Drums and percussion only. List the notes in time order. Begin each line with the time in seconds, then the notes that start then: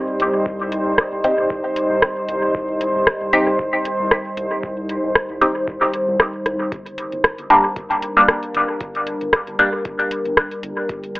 0.20 closed hi-hat
0.46 kick
0.72 closed hi-hat
0.98 kick, cross-stick
1.24 closed hi-hat
1.50 kick
1.76 closed hi-hat
2.02 kick, cross-stick
2.29 closed hi-hat
2.55 kick
2.81 closed hi-hat
3.07 kick, cross-stick
3.33 closed hi-hat
3.59 kick
3.85 closed hi-hat
4.11 kick, cross-stick
4.37 closed hi-hat
4.63 kick
4.89 closed hi-hat
5.15 kick, cross-stick
5.42 closed hi-hat
5.68 kick
5.94 closed hi-hat
6.20 kick, cross-stick
6.46 cross-stick, closed hi-hat
6.72 kick, closed hi-hat
6.86 closed hi-hat
6.98 closed hi-hat
7.12 closed hi-hat
7.24 kick, cross-stick, closed hi-hat
7.39 closed hi-hat
7.50 closed hi-hat
7.76 kick, closed hi-hat
7.91 closed hi-hat
8.02 closed hi-hat
8.17 closed hi-hat
8.28 kick, cross-stick, closed hi-hat
8.43 closed hi-hat
8.55 closed hi-hat
8.81 kick, closed hi-hat
8.95 closed hi-hat
9.07 closed hi-hat
9.21 closed hi-hat
9.33 kick, cross-stick, closed hi-hat
9.47 closed hi-hat
9.59 closed hi-hat
9.85 kick, closed hi-hat
9.99 closed hi-hat
10.11 closed hi-hat
10.25 closed hi-hat
10.37 kick, cross-stick, closed hi-hat
10.51 closed hi-hat
10.63 closed hi-hat
10.89 kick, closed hi-hat
11.04 closed hi-hat
11.15 closed hi-hat